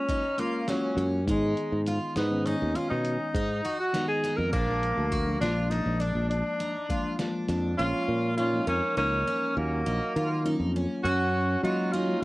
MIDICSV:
0, 0, Header, 1, 7, 480
1, 0, Start_track
1, 0, Tempo, 591716
1, 1032, Time_signature, 11, 3, 24, 8
1, 9931, End_track
2, 0, Start_track
2, 0, Title_t, "Twelve-string acoustic guitar"
2, 0, Program_c, 0, 25
2, 75, Note_on_c, 0, 63, 68
2, 287, Note_off_c, 0, 63, 0
2, 313, Note_on_c, 0, 65, 70
2, 526, Note_off_c, 0, 65, 0
2, 556, Note_on_c, 0, 61, 75
2, 767, Note_off_c, 0, 61, 0
2, 795, Note_on_c, 0, 61, 61
2, 1006, Note_off_c, 0, 61, 0
2, 1043, Note_on_c, 0, 63, 78
2, 1464, Note_off_c, 0, 63, 0
2, 1520, Note_on_c, 0, 65, 68
2, 1729, Note_off_c, 0, 65, 0
2, 1760, Note_on_c, 0, 63, 73
2, 1969, Note_off_c, 0, 63, 0
2, 2003, Note_on_c, 0, 61, 67
2, 2211, Note_off_c, 0, 61, 0
2, 2236, Note_on_c, 0, 61, 66
2, 2660, Note_off_c, 0, 61, 0
2, 2724, Note_on_c, 0, 63, 69
2, 2931, Note_off_c, 0, 63, 0
2, 2961, Note_on_c, 0, 66, 67
2, 3170, Note_off_c, 0, 66, 0
2, 3200, Note_on_c, 0, 63, 79
2, 3409, Note_off_c, 0, 63, 0
2, 3444, Note_on_c, 0, 63, 67
2, 3652, Note_off_c, 0, 63, 0
2, 3673, Note_on_c, 0, 62, 76
2, 4099, Note_off_c, 0, 62, 0
2, 4152, Note_on_c, 0, 66, 71
2, 4365, Note_off_c, 0, 66, 0
2, 4393, Note_on_c, 0, 65, 70
2, 4606, Note_off_c, 0, 65, 0
2, 4631, Note_on_c, 0, 62, 67
2, 4845, Note_off_c, 0, 62, 0
2, 4866, Note_on_c, 0, 62, 66
2, 5296, Note_off_c, 0, 62, 0
2, 5354, Note_on_c, 0, 63, 66
2, 5567, Note_off_c, 0, 63, 0
2, 5597, Note_on_c, 0, 65, 67
2, 5809, Note_off_c, 0, 65, 0
2, 5836, Note_on_c, 0, 62, 73
2, 6048, Note_off_c, 0, 62, 0
2, 6077, Note_on_c, 0, 62, 64
2, 6289, Note_off_c, 0, 62, 0
2, 6320, Note_on_c, 0, 65, 76
2, 6745, Note_off_c, 0, 65, 0
2, 6796, Note_on_c, 0, 63, 70
2, 7009, Note_off_c, 0, 63, 0
2, 7034, Note_on_c, 0, 61, 73
2, 7248, Note_off_c, 0, 61, 0
2, 7276, Note_on_c, 0, 63, 69
2, 7489, Note_off_c, 0, 63, 0
2, 7523, Note_on_c, 0, 61, 75
2, 7947, Note_off_c, 0, 61, 0
2, 8000, Note_on_c, 0, 63, 69
2, 8212, Note_off_c, 0, 63, 0
2, 8244, Note_on_c, 0, 65, 68
2, 8454, Note_off_c, 0, 65, 0
2, 8482, Note_on_c, 0, 63, 79
2, 8692, Note_off_c, 0, 63, 0
2, 8728, Note_on_c, 0, 61, 68
2, 8936, Note_off_c, 0, 61, 0
2, 8966, Note_on_c, 0, 66, 80
2, 9388, Note_off_c, 0, 66, 0
2, 9447, Note_on_c, 0, 65, 72
2, 9655, Note_off_c, 0, 65, 0
2, 9681, Note_on_c, 0, 63, 73
2, 9892, Note_off_c, 0, 63, 0
2, 9931, End_track
3, 0, Start_track
3, 0, Title_t, "Tenor saxophone"
3, 0, Program_c, 1, 66
3, 0, Note_on_c, 1, 61, 85
3, 321, Note_on_c, 1, 58, 77
3, 333, Note_off_c, 1, 61, 0
3, 562, Note_on_c, 1, 54, 72
3, 574, Note_off_c, 1, 58, 0
3, 917, Note_off_c, 1, 54, 0
3, 1057, Note_on_c, 1, 56, 72
3, 1511, Note_off_c, 1, 56, 0
3, 1761, Note_on_c, 1, 59, 81
3, 2001, Note_on_c, 1, 63, 76
3, 2013, Note_off_c, 1, 59, 0
3, 2238, Note_on_c, 1, 65, 75
3, 2250, Note_off_c, 1, 63, 0
3, 2347, Note_off_c, 1, 65, 0
3, 2351, Note_on_c, 1, 63, 85
3, 3039, Note_off_c, 1, 63, 0
3, 3078, Note_on_c, 1, 66, 89
3, 3298, Note_off_c, 1, 66, 0
3, 3311, Note_on_c, 1, 68, 84
3, 3539, Note_on_c, 1, 70, 86
3, 3551, Note_off_c, 1, 68, 0
3, 3665, Note_off_c, 1, 70, 0
3, 3672, Note_on_c, 1, 58, 93
3, 4360, Note_off_c, 1, 58, 0
3, 4388, Note_on_c, 1, 62, 88
3, 4626, Note_on_c, 1, 63, 77
3, 4638, Note_off_c, 1, 62, 0
3, 4868, Note_on_c, 1, 62, 73
3, 4881, Note_off_c, 1, 63, 0
3, 5106, Note_off_c, 1, 62, 0
3, 5111, Note_on_c, 1, 62, 78
3, 5800, Note_off_c, 1, 62, 0
3, 6314, Note_on_c, 1, 65, 104
3, 6762, Note_off_c, 1, 65, 0
3, 6791, Note_on_c, 1, 65, 89
3, 7016, Note_off_c, 1, 65, 0
3, 7041, Note_on_c, 1, 61, 91
3, 7262, Note_off_c, 1, 61, 0
3, 7278, Note_on_c, 1, 61, 92
3, 7725, Note_off_c, 1, 61, 0
3, 7765, Note_on_c, 1, 58, 83
3, 8688, Note_off_c, 1, 58, 0
3, 8951, Note_on_c, 1, 66, 103
3, 9401, Note_off_c, 1, 66, 0
3, 9437, Note_on_c, 1, 66, 88
3, 9670, Note_on_c, 1, 65, 99
3, 9682, Note_off_c, 1, 66, 0
3, 9906, Note_off_c, 1, 65, 0
3, 9931, End_track
4, 0, Start_track
4, 0, Title_t, "Alto saxophone"
4, 0, Program_c, 2, 65
4, 6309, Note_on_c, 2, 61, 87
4, 6760, Note_off_c, 2, 61, 0
4, 6805, Note_on_c, 2, 61, 75
4, 7024, Note_off_c, 2, 61, 0
4, 7032, Note_on_c, 2, 58, 76
4, 7257, Note_off_c, 2, 58, 0
4, 7277, Note_on_c, 2, 58, 79
4, 7724, Note_off_c, 2, 58, 0
4, 7761, Note_on_c, 2, 54, 61
4, 8686, Note_off_c, 2, 54, 0
4, 8959, Note_on_c, 2, 61, 94
4, 9405, Note_off_c, 2, 61, 0
4, 9441, Note_on_c, 2, 63, 76
4, 9682, Note_on_c, 2, 61, 81
4, 9694, Note_off_c, 2, 63, 0
4, 9918, Note_off_c, 2, 61, 0
4, 9931, End_track
5, 0, Start_track
5, 0, Title_t, "Tine electric piano"
5, 0, Program_c, 3, 4
5, 0, Note_on_c, 3, 56, 69
5, 0, Note_on_c, 3, 58, 60
5, 0, Note_on_c, 3, 61, 64
5, 0, Note_on_c, 3, 65, 80
5, 183, Note_off_c, 3, 56, 0
5, 185, Note_off_c, 3, 58, 0
5, 186, Note_off_c, 3, 61, 0
5, 189, Note_off_c, 3, 65, 0
5, 305, Note_on_c, 3, 56, 74
5, 311, Note_on_c, 3, 58, 69
5, 313, Note_on_c, 3, 61, 69
5, 318, Note_on_c, 3, 65, 80
5, 517, Note_off_c, 3, 56, 0
5, 520, Note_off_c, 3, 58, 0
5, 521, Note_off_c, 3, 61, 0
5, 523, Note_off_c, 3, 65, 0
5, 551, Note_on_c, 3, 56, 76
5, 554, Note_on_c, 3, 58, 69
5, 558, Note_on_c, 3, 61, 67
5, 560, Note_on_c, 3, 65, 78
5, 968, Note_off_c, 3, 56, 0
5, 970, Note_off_c, 3, 58, 0
5, 972, Note_off_c, 3, 61, 0
5, 973, Note_off_c, 3, 65, 0
5, 1030, Note_on_c, 3, 51, 62
5, 1032, Note_on_c, 3, 56, 62
5, 1035, Note_on_c, 3, 59, 57
5, 1037, Note_on_c, 3, 63, 70
5, 1761, Note_off_c, 3, 51, 0
5, 1762, Note_off_c, 3, 56, 0
5, 1763, Note_off_c, 3, 59, 0
5, 1764, Note_off_c, 3, 63, 0
5, 1873, Note_on_c, 3, 51, 70
5, 1877, Note_on_c, 3, 56, 65
5, 1877, Note_on_c, 3, 59, 67
5, 1879, Note_on_c, 3, 61, 81
5, 2707, Note_off_c, 3, 51, 0
5, 2709, Note_off_c, 3, 56, 0
5, 2709, Note_off_c, 3, 59, 0
5, 2710, Note_off_c, 3, 61, 0
5, 3189, Note_on_c, 3, 51, 71
5, 3191, Note_on_c, 3, 56, 68
5, 3196, Note_on_c, 3, 59, 68
5, 3201, Note_on_c, 3, 63, 78
5, 3671, Note_off_c, 3, 51, 0
5, 3672, Note_off_c, 3, 56, 0
5, 3674, Note_off_c, 3, 59, 0
5, 3676, Note_off_c, 3, 63, 0
5, 3791, Note_on_c, 3, 53, 60
5, 3792, Note_on_c, 3, 56, 54
5, 3796, Note_on_c, 3, 58, 59
5, 3799, Note_on_c, 3, 62, 69
5, 4209, Note_off_c, 3, 53, 0
5, 4209, Note_off_c, 3, 56, 0
5, 4212, Note_off_c, 3, 58, 0
5, 4213, Note_off_c, 3, 62, 0
5, 4272, Note_on_c, 3, 53, 60
5, 4275, Note_on_c, 3, 56, 60
5, 4278, Note_on_c, 3, 58, 60
5, 4285, Note_on_c, 3, 62, 67
5, 4377, Note_off_c, 3, 53, 0
5, 4378, Note_off_c, 3, 56, 0
5, 4380, Note_off_c, 3, 58, 0
5, 4383, Note_off_c, 3, 62, 0
5, 4391, Note_on_c, 3, 53, 62
5, 4396, Note_on_c, 3, 56, 58
5, 4399, Note_on_c, 3, 58, 60
5, 4404, Note_on_c, 3, 65, 69
5, 4601, Note_off_c, 3, 53, 0
5, 4603, Note_off_c, 3, 56, 0
5, 4604, Note_off_c, 3, 58, 0
5, 4607, Note_off_c, 3, 65, 0
5, 4630, Note_on_c, 3, 53, 70
5, 4631, Note_on_c, 3, 56, 61
5, 4635, Note_on_c, 3, 58, 65
5, 4638, Note_on_c, 3, 62, 76
5, 5467, Note_off_c, 3, 53, 0
5, 5467, Note_off_c, 3, 56, 0
5, 5469, Note_off_c, 3, 58, 0
5, 5471, Note_off_c, 3, 62, 0
5, 5589, Note_on_c, 3, 53, 72
5, 5594, Note_on_c, 3, 56, 64
5, 5595, Note_on_c, 3, 58, 68
5, 5598, Note_on_c, 3, 62, 82
5, 5800, Note_off_c, 3, 53, 0
5, 5803, Note_off_c, 3, 56, 0
5, 5803, Note_off_c, 3, 58, 0
5, 5805, Note_off_c, 3, 62, 0
5, 5834, Note_on_c, 3, 56, 78
5, 5835, Note_on_c, 3, 53, 86
5, 5838, Note_on_c, 3, 58, 80
5, 5843, Note_on_c, 3, 65, 104
5, 6252, Note_off_c, 3, 53, 0
5, 6252, Note_off_c, 3, 56, 0
5, 6254, Note_off_c, 3, 58, 0
5, 6256, Note_off_c, 3, 65, 0
5, 6315, Note_on_c, 3, 53, 61
5, 6321, Note_on_c, 3, 58, 52
5, 6322, Note_on_c, 3, 56, 59
5, 6328, Note_on_c, 3, 61, 66
5, 6837, Note_off_c, 3, 53, 0
5, 6840, Note_off_c, 3, 56, 0
5, 6840, Note_off_c, 3, 58, 0
5, 6843, Note_off_c, 3, 61, 0
5, 6917, Note_on_c, 3, 53, 59
5, 6919, Note_on_c, 3, 56, 52
5, 6924, Note_on_c, 3, 58, 57
5, 6930, Note_on_c, 3, 63, 68
5, 7751, Note_off_c, 3, 53, 0
5, 7753, Note_off_c, 3, 56, 0
5, 7755, Note_off_c, 3, 58, 0
5, 7758, Note_off_c, 3, 63, 0
5, 8470, Note_on_c, 3, 54, 84
5, 8475, Note_on_c, 3, 58, 78
5, 8477, Note_on_c, 3, 61, 80
5, 8484, Note_on_c, 3, 65, 93
5, 8953, Note_off_c, 3, 54, 0
5, 8956, Note_off_c, 3, 58, 0
5, 8957, Note_off_c, 3, 61, 0
5, 8960, Note_off_c, 3, 65, 0
5, 9431, Note_on_c, 3, 56, 75
5, 9435, Note_on_c, 3, 58, 68
5, 9439, Note_on_c, 3, 61, 73
5, 9441, Note_on_c, 3, 65, 80
5, 9746, Note_off_c, 3, 56, 0
5, 9748, Note_off_c, 3, 58, 0
5, 9750, Note_off_c, 3, 61, 0
5, 9751, Note_off_c, 3, 65, 0
5, 9788, Note_on_c, 3, 56, 61
5, 9793, Note_on_c, 3, 58, 62
5, 9796, Note_on_c, 3, 61, 55
5, 9803, Note_on_c, 3, 65, 72
5, 9931, Note_off_c, 3, 56, 0
5, 9931, Note_off_c, 3, 58, 0
5, 9931, Note_off_c, 3, 61, 0
5, 9931, Note_off_c, 3, 65, 0
5, 9931, End_track
6, 0, Start_track
6, 0, Title_t, "Fingered electric bass"
6, 0, Program_c, 4, 33
6, 784, Note_on_c, 4, 42, 80
6, 1034, Note_off_c, 4, 42, 0
6, 1034, Note_on_c, 4, 44, 90
6, 1240, Note_off_c, 4, 44, 0
6, 1398, Note_on_c, 4, 44, 71
6, 1603, Note_off_c, 4, 44, 0
6, 1757, Note_on_c, 4, 44, 86
6, 2065, Note_off_c, 4, 44, 0
6, 2126, Note_on_c, 4, 39, 85
6, 2223, Note_off_c, 4, 39, 0
6, 2364, Note_on_c, 4, 47, 74
6, 2566, Note_off_c, 4, 47, 0
6, 2714, Note_on_c, 4, 44, 82
6, 2920, Note_off_c, 4, 44, 0
6, 3556, Note_on_c, 4, 41, 73
6, 3658, Note_off_c, 4, 41, 0
6, 3675, Note_on_c, 4, 34, 83
6, 3985, Note_off_c, 4, 34, 0
6, 4036, Note_on_c, 4, 38, 71
6, 4346, Note_off_c, 4, 38, 0
6, 4390, Note_on_c, 4, 34, 80
6, 4703, Note_off_c, 4, 34, 0
6, 4753, Note_on_c, 4, 34, 89
6, 4960, Note_off_c, 4, 34, 0
6, 4991, Note_on_c, 4, 34, 80
6, 5199, Note_off_c, 4, 34, 0
6, 6073, Note_on_c, 4, 41, 78
6, 6281, Note_off_c, 4, 41, 0
6, 6320, Note_on_c, 4, 34, 83
6, 6421, Note_off_c, 4, 34, 0
6, 6557, Note_on_c, 4, 46, 80
6, 6971, Note_off_c, 4, 46, 0
6, 7036, Note_on_c, 4, 41, 87
6, 7139, Note_off_c, 4, 41, 0
6, 7278, Note_on_c, 4, 37, 81
6, 7484, Note_off_c, 4, 37, 0
6, 7762, Note_on_c, 4, 39, 95
6, 7967, Note_off_c, 4, 39, 0
6, 8004, Note_on_c, 4, 34, 84
6, 8104, Note_off_c, 4, 34, 0
6, 8242, Note_on_c, 4, 51, 86
6, 8550, Note_off_c, 4, 51, 0
6, 8596, Note_on_c, 4, 41, 88
6, 8803, Note_off_c, 4, 41, 0
6, 8958, Note_on_c, 4, 42, 89
6, 9371, Note_off_c, 4, 42, 0
6, 9436, Note_on_c, 4, 54, 79
6, 9850, Note_off_c, 4, 54, 0
6, 9931, End_track
7, 0, Start_track
7, 0, Title_t, "Drums"
7, 70, Note_on_c, 9, 42, 54
7, 72, Note_on_c, 9, 36, 62
7, 151, Note_off_c, 9, 42, 0
7, 153, Note_off_c, 9, 36, 0
7, 310, Note_on_c, 9, 42, 54
7, 391, Note_off_c, 9, 42, 0
7, 550, Note_on_c, 9, 38, 100
7, 550, Note_on_c, 9, 42, 77
7, 631, Note_off_c, 9, 38, 0
7, 631, Note_off_c, 9, 42, 0
7, 793, Note_on_c, 9, 42, 58
7, 875, Note_off_c, 9, 42, 0
7, 1035, Note_on_c, 9, 36, 98
7, 1037, Note_on_c, 9, 42, 81
7, 1116, Note_off_c, 9, 36, 0
7, 1118, Note_off_c, 9, 42, 0
7, 1275, Note_on_c, 9, 42, 55
7, 1357, Note_off_c, 9, 42, 0
7, 1514, Note_on_c, 9, 42, 60
7, 1595, Note_off_c, 9, 42, 0
7, 1752, Note_on_c, 9, 38, 100
7, 1752, Note_on_c, 9, 42, 71
7, 1833, Note_off_c, 9, 38, 0
7, 1833, Note_off_c, 9, 42, 0
7, 1994, Note_on_c, 9, 42, 56
7, 2076, Note_off_c, 9, 42, 0
7, 2235, Note_on_c, 9, 42, 52
7, 2316, Note_off_c, 9, 42, 0
7, 2472, Note_on_c, 9, 42, 71
7, 2553, Note_off_c, 9, 42, 0
7, 2715, Note_on_c, 9, 36, 60
7, 2715, Note_on_c, 9, 42, 51
7, 2796, Note_off_c, 9, 36, 0
7, 2796, Note_off_c, 9, 42, 0
7, 2958, Note_on_c, 9, 42, 51
7, 3039, Note_off_c, 9, 42, 0
7, 3196, Note_on_c, 9, 38, 96
7, 3196, Note_on_c, 9, 42, 72
7, 3277, Note_off_c, 9, 38, 0
7, 3277, Note_off_c, 9, 42, 0
7, 3437, Note_on_c, 9, 38, 29
7, 3437, Note_on_c, 9, 42, 52
7, 3518, Note_off_c, 9, 38, 0
7, 3518, Note_off_c, 9, 42, 0
7, 3676, Note_on_c, 9, 36, 97
7, 3676, Note_on_c, 9, 42, 71
7, 3757, Note_off_c, 9, 36, 0
7, 3757, Note_off_c, 9, 42, 0
7, 3918, Note_on_c, 9, 42, 53
7, 3999, Note_off_c, 9, 42, 0
7, 4156, Note_on_c, 9, 36, 69
7, 4160, Note_on_c, 9, 42, 59
7, 4237, Note_off_c, 9, 36, 0
7, 4241, Note_off_c, 9, 42, 0
7, 4403, Note_on_c, 9, 38, 100
7, 4403, Note_on_c, 9, 42, 75
7, 4485, Note_off_c, 9, 38, 0
7, 4485, Note_off_c, 9, 42, 0
7, 4642, Note_on_c, 9, 42, 56
7, 4723, Note_off_c, 9, 42, 0
7, 4879, Note_on_c, 9, 42, 58
7, 4960, Note_off_c, 9, 42, 0
7, 5118, Note_on_c, 9, 42, 79
7, 5199, Note_off_c, 9, 42, 0
7, 5356, Note_on_c, 9, 42, 56
7, 5437, Note_off_c, 9, 42, 0
7, 5595, Note_on_c, 9, 36, 64
7, 5596, Note_on_c, 9, 42, 57
7, 5676, Note_off_c, 9, 36, 0
7, 5677, Note_off_c, 9, 42, 0
7, 5833, Note_on_c, 9, 38, 99
7, 5833, Note_on_c, 9, 42, 75
7, 5914, Note_off_c, 9, 38, 0
7, 5914, Note_off_c, 9, 42, 0
7, 6072, Note_on_c, 9, 38, 30
7, 6072, Note_on_c, 9, 42, 54
7, 6153, Note_off_c, 9, 38, 0
7, 6153, Note_off_c, 9, 42, 0
7, 9931, End_track
0, 0, End_of_file